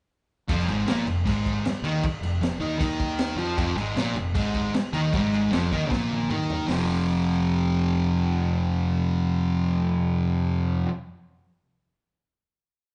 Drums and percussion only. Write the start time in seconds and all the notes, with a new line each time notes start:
0.49 kick, crash
0.60 snare
0.68 crash
0.88 snare, crash
1.07 crash
1.27 kick, crash
1.46 kick, crash
1.65 snare, crash
1.85 crash
2.03 kick, crash
2.23 crash
2.43 snare, crash
2.62 crash
2.81 kick, crash
3.00 kick, crash
3.19 snare, crash
3.39 crash
3.58 kick, crash
3.78 crash
3.97 snare, crash
4.16 crash
4.35 kick, crash
4.54 kick, crash
4.74 snare, crash
4.94 crash
5.13 kick, crash
5.34 crash
5.53 snare, crash
5.72 kick, crash
5.91 kick, snare
6.11 high tom
6.30 mid tom
6.50 floor tom
6.69 snare, open hi-hat